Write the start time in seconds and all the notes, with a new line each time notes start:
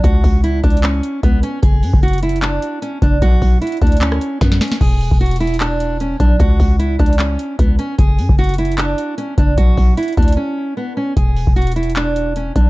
0.04 C#2 F#4, kick, closed hi-hat
0.24 C#2, kick, open hi-hat
0.44 E4, closed hi-hat
0.63 C#2 D4, kick, closed hi-hat
0.70 closed hi-hat
0.77 closed hi-hat
0.83 C#4, clap, closed hi-hat
1.03 closed hi-hat
1.23 C#2 B3, kick, closed hi-hat
1.43 C#4, closed hi-hat
1.62 F#1 G#4, kick, closed hi-hat
1.83 F#2, open hi-hat
1.93 F#1, kick
2.03 F#4, closed hi-hat
2.08 closed hi-hat
2.13 closed hi-hat
2.18 closed hi-hat
2.23 E4, closed hi-hat
2.29 closed hi-hat
2.36 closed hi-hat
2.42 D4, clap, closed hi-hat
2.62 closed hi-hat
2.82 C#4, closed hi-hat
3.02 F#1 D4, kick, closed hi-hat
3.22 B1 F#4, kick, closed hi-hat
3.42 B1, kick, open hi-hat
3.62 E4, closed hi-hat
3.67 closed hi-hat
3.72 closed hi-hat
3.77 closed hi-hat
3.81 D2 D4, kick, closed hi-hat
3.87 closed hi-hat
3.92 closed hi-hat
3.97 closed hi-hat
4.01 C#4, clap, closed hi-hat
4.12 cross-stick
4.21 closed hi-hat
4.41 F#2 B3, kick, snare, closed hi-hat
4.52 snare
4.61 C#4, snare, closed hi-hat
4.68 snare, closed hi-hat
4.74 closed hi-hat
4.81 E1 G#4, kick, crash
5.01 open hi-hat
5.11 E1, kick
5.21 F#4, closed hi-hat
5.26 closed hi-hat
5.31 closed hi-hat
5.36 closed hi-hat
5.40 E4, closed hi-hat
5.47 closed hi-hat
5.54 closed hi-hat
5.60 D4, clap, closed hi-hat
5.80 closed hi-hat
6.00 C#4, closed hi-hat
6.20 B1 D4, kick, closed hi-hat
6.39 C#2 F#4, kick, closed hi-hat
6.60 C#2, kick, open hi-hat
6.79 E4, closed hi-hat
6.99 C#2 D4, kick, closed hi-hat
7.06 closed hi-hat
7.13 closed hi-hat
7.19 C#4, clap, closed hi-hat
7.39 closed hi-hat
7.59 C#2 B3, kick, closed hi-hat
7.79 C#4, closed hi-hat
7.98 F#1 G#4, kick, closed hi-hat
8.19 F#2, open hi-hat
8.29 F#1, kick
8.38 F#4, closed hi-hat
8.44 closed hi-hat
8.49 closed hi-hat
8.54 closed hi-hat
8.58 E4, closed hi-hat
8.65 closed hi-hat
8.72 closed hi-hat
8.78 D4, clap, closed hi-hat
8.98 closed hi-hat
9.18 C#4, closed hi-hat
9.38 F#1 D4, kick, closed hi-hat
9.58 B1 F#4, kick, closed hi-hat
9.77 B1, kick, open hi-hat
9.97 E4, closed hi-hat
10.03 closed hi-hat
10.08 closed hi-hat
10.13 closed hi-hat
10.17 D2 D4, kick, closed hi-hat
10.23 closed hi-hat
10.28 closed hi-hat
10.32 closed hi-hat
10.37 C#4
10.77 B3
10.97 C#4
11.17 E1 G#4, kick, closed hi-hat
11.36 open hi-hat
11.47 E1, kick
11.56 F#4, closed hi-hat
11.62 closed hi-hat
11.67 closed hi-hat
11.72 closed hi-hat
11.76 E4, closed hi-hat
11.83 closed hi-hat
11.90 closed hi-hat
11.96 D4, clap, closed hi-hat
12.16 closed hi-hat
12.36 C#4, closed hi-hat
12.55 B1 D4, kick, closed hi-hat